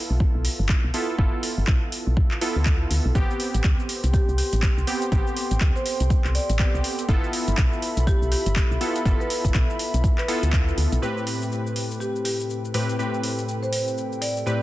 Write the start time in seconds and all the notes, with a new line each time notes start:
Already playing: B3 E4 F4 A4
0.10 B1
0.20 kick
0.35 B1
0.45 open hi-hat
0.59 G1
0.69 kick, clap
0.84 B1
0.94 B3 E4 F4 A4, open hi-hat
1.18 G1 B3 E4 F4 A4, kick
1.43 open hi-hat
1.58 G1
1.67 B1, kick, clap
1.92 open hi-hat
2.07 B1
2.17 kick
2.31 clap
2.41 B3 E4 F4 A4, open hi-hat
2.56 D2
2.66 kick, clap
2.91 D2, open hi-hat
3.05 B1
3.15 A1 B3 C4 G4 A4 G5 C6, kick, closed hi-hat, cabasa
3.31 cabasa
3.40 open hi-hat
3.54 A1, closed hi-hat, cabasa
3.64 D2, kick, clap, closed hi-hat, cabasa
3.80 cabasa
3.89 open hi-hat
4.04 C2, closed hi-hat, cabasa
4.13 G4, kick, closed hi-hat, cabasa
4.28 C2, cabasa
4.38 G4, open hi-hat
4.53 A1, closed hi-hat, cabasa
4.62 kick, clap, closed hi-hat, cabasa
4.77 C2, cabasa
4.87 B3 C4 G4, open hi-hat
5.02 closed hi-hat, cabasa
5.12 A1 B3 C4 G4, kick, closed hi-hat, cabasa
5.27 cabasa
5.37 open hi-hat
5.51 A1, closed hi-hat, cabasa
5.61 D2, kick, clap, closed hi-hat, cabasa
5.76 C5, cabasa
5.86 C5, open hi-hat
6.00 C2, closed hi-hat, cabasa
6.10 kick, closed hi-hat, cabasa
6.24 C2, clap, cabasa
6.35 D5, open hi-hat
6.50 A1, closed hi-hat, cabasa
6.59 B3 C4 G4 D5, kick, clap, closed hi-hat, cabasa
6.74 C2, cabasa
6.84 open hi-hat
6.99 closed hi-hat, cabasa
7.08 G1 B3 E4 F4 A4 E5 B5, kick, closed hi-hat, cabasa
7.24 cabasa
7.33 open hi-hat
7.48 G1, closed hi-hat, cabasa
7.57 B1, kick, clap, closed hi-hat, cabasa
7.73 cabasa
7.82 open hi-hat
7.97 B1, closed hi-hat, cabasa
8.07 G4, kick, closed hi-hat, cabasa
8.22 B1, cabasa
8.32 G4, open hi-hat
8.46 G1, closed hi-hat, cabasa
8.56 kick, clap, closed hi-hat, cabasa
8.71 B1, cabasa
8.81 B3 E4 F4 A4, open hi-hat
8.96 closed hi-hat, cabasa
9.05 G1 B3 E4 F4 A4, kick, closed hi-hat, cabasa
9.20 B4, cabasa
9.30 open hi-hat
9.45 G1, kick, closed hi-hat, cabasa
9.54 B1, kick, clap, closed hi-hat, cabasa
9.70 cabasa
9.79 open hi-hat
9.94 B1, closed hi-hat, cabasa
10.04 kick, closed hi-hat, cabasa
10.18 B4, clap, cabasa
10.28 B3 E4 F4 A4, open hi-hat
10.43 D2, closed hi-hat, cabasa
10.53 kick, clap, closed hi-hat, cabasa
10.68 cabasa
10.78 D2, open hi-hat
10.92 B1, closed hi-hat, cabasa
11.02 A2 C4 G4 A4 B4 G5, cabasa
11.18 cabasa
11.27 open hi-hat
11.42 cabasa
11.52 cabasa
11.67 cabasa
11.76 open hi-hat
11.91 cabasa
12.00 G4, cabasa
12.16 cabasa
12.25 G4, open hi-hat
12.40 cabasa
12.50 cabasa
12.65 cabasa
12.74 A2 C4 G4 B4, open hi-hat
12.89 cabasa
12.98 A2 C4 G4 B4, cabasa
13.14 cabasa
13.24 open hi-hat
13.39 cabasa
13.49 cabasa
13.63 C5, cabasa
13.72 C5, open hi-hat
13.88 cabasa
13.98 cabasa
14.12 cabasa
14.22 D5, open hi-hat
14.37 cabasa
14.46 A2 C4 G4 B4 D5, cabasa